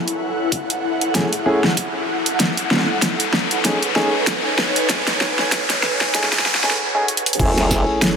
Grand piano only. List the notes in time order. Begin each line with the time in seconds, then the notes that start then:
1.14 A3 C#4 E4 G#4
1.46 A3 C#4 E4 G#4
3.65 A3 C#4 D#4 G#4
3.96 A3 C#4 D#4 G#4
6.14 A3 C#4 D#4 G#4
6.63 A3 C#4 D#4 G#4
6.95 A3 C#4 D#4 G#4
7.39 A3 C#4 E4 G#4